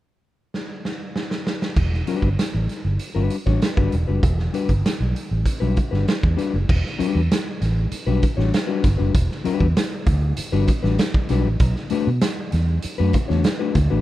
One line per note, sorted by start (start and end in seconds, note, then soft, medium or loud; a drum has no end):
0.54 snare medium
0.85 snare medium
1.16 snare medium
1.31 snare medium
1.47 snare medium
1.62 snare medium
1.76 2.01 E1 medium
1.76 kick loud
1.76 crash medium
1.93 snare soft
2.07 2.27 G3 medium
2.07 2.28 D4 medium
2.07 2.28 F#4 medium
2.07 2.28 B4 medium
2.07 closed hi-hat medium
2.22 2.35 G1 medium
2.22 kick medium
2.39 snare medium
2.39 closed hi-hat medium
2.55 2.66 A1 medium
2.69 snare soft
2.69 closed hi-hat medium
2.85 2.97 G1 medium
2.99 closed hi-hat medium
3.15 3.28 G1 medium
3.15 3.36 G3 medium
3.15 3.36 D4 medium
3.15 3.35 F#4 medium
3.15 3.35 B4 medium
3.30 closed hi-hat medium
3.46 3.59 A1 medium
3.46 3.60 G3 soft
3.46 3.60 D4 medium
3.46 3.60 F#4 medium
3.46 3.59 C#5 medium
3.46 kick medium
3.46 snare soft
3.62 snare loud
3.62 closed hi-hat medium
3.77 3.89 G1 medium
3.77 3.95 G3 medium
3.77 3.95 D4 medium
3.77 3.94 F#4 medium
3.77 3.94 B4 medium
3.77 kick medium
3.92 4.05 E1 medium
3.92 closed hi-hat medium
4.08 4.20 F#1 medium
4.08 4.22 G3 soft
4.08 4.22 D4 medium
4.08 4.21 F#4 medium
4.08 4.21 B4 medium
4.23 4.47 E1 loud
4.23 kick loud
4.23 closed hi-hat medium
4.39 snare soft
4.53 4.71 G3 medium
4.53 4.71 D4 medium
4.53 4.71 F#4 medium
4.53 4.72 B4 medium
4.53 closed hi-hat medium
4.69 4.81 G1 medium
4.69 kick medium
4.69 closed hi-hat soft
4.86 snare loud
4.86 closed hi-hat medium
5.00 5.12 B1 medium
5.16 closed hi-hat medium
5.31 5.43 A1 medium
5.46 kick medium
5.46 closed hi-hat loud
5.60 5.74 B1 medium
5.60 5.79 G3 medium
5.60 5.79 D4 medium
5.60 5.78 F#4 medium
5.60 5.78 B4 medium
5.77 kick medium
5.77 closed hi-hat medium
5.91 6.04 G1 medium
5.91 6.06 G3 soft
5.91 6.06 D4 soft
5.91 6.06 F#4 medium
5.91 6.05 B4 medium
5.91 snare soft
6.08 snare loud
6.08 closed hi-hat medium
6.23 6.35 E2 medium
6.23 kick loud
6.37 6.55 G3 medium
6.37 6.55 D4 medium
6.37 6.55 F#4 medium
6.37 6.56 B4 medium
6.37 snare soft
6.37 closed hi-hat medium
6.54 6.66 F#1 loud
6.69 6.81 E1 loud
6.69 kick loud
6.69 crash medium
6.86 snare soft
6.99 7.19 G3 medium
6.99 7.20 D4 medium
6.99 7.20 F#4 medium
6.99 7.20 B4 medium
6.99 muted fingered electric bass stroke soft
6.99 closed hi-hat medium
7.15 7.27 E2 medium
7.32 snare loud
7.32 closed hi-hat loud
7.62 7.85 A1 loud
7.62 snare soft
7.62 closed hi-hat medium
7.92 muted fingered electric bass stroke soft
7.92 closed hi-hat loud
8.07 8.19 B1 medium
8.07 8.25 G3 medium
8.07 8.25 D4 medium
8.07 8.25 F#4 medium
8.07 8.24 B4 medium
8.23 kick medium
8.23 closed hi-hat medium
8.37 8.50 A1 medium
8.37 8.52 G3 soft
8.37 8.52 D4 medium
8.37 8.51 F#4 medium
8.37 8.51 C#5 medium
8.37 snare soft
8.54 snare loud
8.54 closed hi-hat medium
8.67 8.86 G3 medium
8.67 8.86 D4 medium
8.67 8.85 F#4 medium
8.67 8.85 B4 medium
8.84 8.96 G1 medium
8.84 kick loud
8.84 snare soft
8.84 closed hi-hat medium
8.98 9.12 F#1 medium
8.98 9.13 G3 soft
8.98 9.13 D4 medium
8.98 9.12 F#4 medium
8.98 9.12 B4 medium
9.14 9.27 E1 loud
9.14 kick loud
9.14 closed hi-hat medium
9.31 snare soft
9.44 9.65 G3 medium
9.44 9.65 D4 medium
9.44 9.66 F#4 medium
9.44 9.66 B4 loud
9.44 muted fingered electric bass stroke soft
9.44 closed hi-hat medium
9.60 9.73 E2 loud
9.60 kick medium
9.77 snare loud
9.77 closed hi-hat loud
10.06 10.31 D2 medium
10.06 kick medium
10.06 closed hi-hat medium
10.37 muted fingered electric bass stroke soft
10.37 closed hi-hat loud
10.52 10.65 G1 medium
10.52 10.71 G3 medium
10.52 10.70 D4 medium
10.52 10.70 F#4 loud
10.52 10.70 B4 medium
10.68 kick medium
10.68 closed hi-hat medium
10.83 10.96 A1 loud
10.83 10.98 G3 medium
10.83 10.97 D4 medium
10.83 10.97 F#4 medium
10.83 10.97 B4 medium
10.83 snare soft
10.99 snare loud
10.99 closed hi-hat medium
11.14 kick loud
11.29 11.45 B1 medium
11.29 11.47 G3 medium
11.29 11.47 D4 medium
11.29 11.47 F#4 medium
11.29 11.48 B4 medium
11.29 snare soft
11.29 closed hi-hat medium
11.45 11.57 A1 medium
11.60 11.72 B1 loud
11.60 kick loud
11.60 closed hi-hat medium
11.76 snare soft
11.90 12.08 A3 medium
11.90 12.08 D4 loud
11.90 12.09 F#4 loud
11.90 12.09 B4 loud
11.90 muted fingered electric bass stroke medium
11.90 closed hi-hat medium
12.07 12.19 B2 medium
12.21 snare loud
12.21 closed hi-hat loud
12.52 12.77 E2 medium
12.52 snare soft
12.52 closed hi-hat medium
12.82 muted fingered electric bass stroke soft
12.82 closed hi-hat loud
12.98 13.11 F#2 medium
12.98 13.17 A3 medium
12.98 13.16 D4 medium
12.98 13.16 F#4 medium
12.98 13.16 B4 medium
13.13 kick medium
13.13 closed hi-hat medium
13.28 13.42 E2 medium
13.28 13.43 A3 medium
13.28 13.43 D4 medium
13.28 13.43 F#4 medium
13.28 13.42 C#5 medium
13.28 snare soft
13.44 snare loud
13.44 closed hi-hat medium
13.59 13.78 A3 medium
13.59 13.78 D4 medium
13.59 13.77 F#4 medium
13.59 13.77 B4 medium
13.75 13.87 D2 medium
13.75 kick medium
13.75 snare soft
13.75 closed hi-hat medium
13.90 14.01 A1 medium
13.90 14.01 A3 soft
13.90 14.01 D4 medium
13.90 14.01 F#4 medium
13.90 14.01 B4 medium